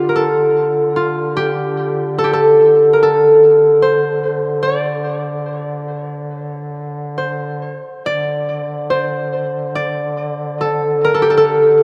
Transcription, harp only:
0, 0, Header, 1, 2, 480
1, 0, Start_track
1, 0, Key_signature, -1, "minor"
1, 0, Tempo, 813008
1, 808, Time_signature, 4, 2, 24, 8
1, 2729, Tempo, 836820
1, 3689, Tempo, 882353
1, 4649, Tempo, 851064
1, 5609, Tempo, 816327
1, 6825, End_track
2, 0, Start_track
2, 0, Title_t, "Harp"
2, 0, Program_c, 0, 46
2, 0, Note_on_c, 0, 65, 67
2, 0, Note_on_c, 0, 67, 65
2, 0, Note_on_c, 0, 69, 63
2, 53, Note_on_c, 0, 70, 53
2, 88, Note_off_c, 0, 69, 0
2, 92, Note_on_c, 0, 69, 66
2, 128, Note_off_c, 0, 70, 0
2, 565, Note_off_c, 0, 65, 0
2, 567, Note_on_c, 0, 65, 70
2, 804, Note_off_c, 0, 67, 0
2, 806, Note_on_c, 0, 67, 77
2, 1287, Note_off_c, 0, 69, 0
2, 1289, Note_on_c, 0, 69, 76
2, 1320, Note_off_c, 0, 67, 0
2, 1322, Note_on_c, 0, 67, 65
2, 1376, Note_off_c, 0, 69, 0
2, 1378, Note_on_c, 0, 69, 74
2, 1732, Note_on_c, 0, 70, 62
2, 1784, Note_off_c, 0, 69, 0
2, 1787, Note_on_c, 0, 69, 75
2, 1822, Note_off_c, 0, 70, 0
2, 2057, Note_off_c, 0, 65, 0
2, 2257, Note_on_c, 0, 72, 74
2, 2712, Note_off_c, 0, 67, 0
2, 2731, Note_on_c, 0, 74, 73
2, 3073, Note_off_c, 0, 69, 0
2, 3406, Note_off_c, 0, 72, 0
2, 4146, Note_off_c, 0, 74, 0
2, 4168, Note_on_c, 0, 72, 60
2, 4649, Note_on_c, 0, 74, 82
2, 5121, Note_off_c, 0, 72, 0
2, 5123, Note_on_c, 0, 72, 72
2, 5602, Note_off_c, 0, 74, 0
2, 5604, Note_on_c, 0, 74, 76
2, 6106, Note_on_c, 0, 69, 69
2, 6266, Note_off_c, 0, 72, 0
2, 6363, Note_on_c, 0, 70, 67
2, 6398, Note_off_c, 0, 69, 0
2, 6421, Note_on_c, 0, 69, 64
2, 6456, Note_off_c, 0, 70, 0
2, 6466, Note_on_c, 0, 67, 63
2, 6511, Note_off_c, 0, 69, 0
2, 6513, Note_on_c, 0, 69, 61
2, 6554, Note_off_c, 0, 69, 0
2, 6557, Note_on_c, 0, 69, 76
2, 6690, Note_off_c, 0, 74, 0
2, 6825, Note_off_c, 0, 67, 0
2, 6825, Note_off_c, 0, 69, 0
2, 6825, End_track
0, 0, End_of_file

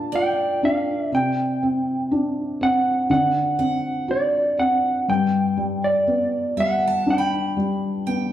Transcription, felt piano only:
0, 0, Header, 1, 2, 480
1, 0, Start_track
1, 0, Key_signature, 1, "major"
1, 0, Tempo, 995025
1, 536, Time_signature, 4, 2, 24, 8
1, 4016, End_track
2, 0, Start_track
2, 0, Title_t, "Felt piano"
2, 0, Program_c, 0, 0
2, 0, Control_c, 0, 64, 127
2, 0, Note_on_c, 0, 46, 58
2, 0, Note_on_c, 0, 62, 50
2, 60, Note_on_c, 0, 65, 51
2, 297, Note_off_c, 0, 62, 0
2, 304, Note_on_c, 0, 62, 52
2, 518, Note_off_c, 0, 46, 0
2, 523, Note_off_c, 0, 65, 0
2, 533, Note_off_c, 0, 62, 0
2, 540, Note_on_c, 0, 48, 62
2, 542, Control_c, 0, 64, 0
2, 626, Control_c, 0, 64, 127
2, 785, Note_on_c, 0, 60, 47
2, 1020, Note_on_c, 0, 62, 50
2, 1252, Note_off_c, 0, 60, 0
2, 1259, Note_on_c, 0, 60, 51
2, 1478, Note_off_c, 0, 48, 0
2, 1483, Note_off_c, 0, 62, 0
2, 1490, Note_off_c, 0, 60, 0
2, 1494, Note_on_c, 0, 50, 58
2, 1501, Control_c, 0, 64, 0
2, 1589, Control_c, 0, 64, 127
2, 1731, Note_on_c, 0, 60, 50
2, 1969, Note_on_c, 0, 66, 47
2, 2205, Note_off_c, 0, 60, 0
2, 2212, Note_on_c, 0, 60, 50
2, 2434, Note_off_c, 0, 50, 0
2, 2437, Note_off_c, 0, 66, 0
2, 2446, Note_off_c, 0, 60, 0
2, 2453, Note_on_c, 0, 43, 59
2, 2460, Control_c, 0, 64, 0
2, 2530, Control_c, 0, 64, 127
2, 2688, Note_on_c, 0, 55, 45
2, 2931, Note_on_c, 0, 59, 50
2, 3162, Note_off_c, 0, 55, 0
2, 3169, Note_on_c, 0, 55, 44
2, 3408, Note_on_c, 0, 62, 51
2, 3643, Note_off_c, 0, 55, 0
2, 3650, Note_on_c, 0, 55, 47
2, 3873, Note_off_c, 0, 59, 0
2, 3894, Note_on_c, 0, 59, 46
2, 4016, Note_off_c, 0, 43, 0
2, 4016, Note_off_c, 0, 55, 0
2, 4016, Note_off_c, 0, 59, 0
2, 4016, Note_off_c, 0, 62, 0
2, 4016, End_track
0, 0, End_of_file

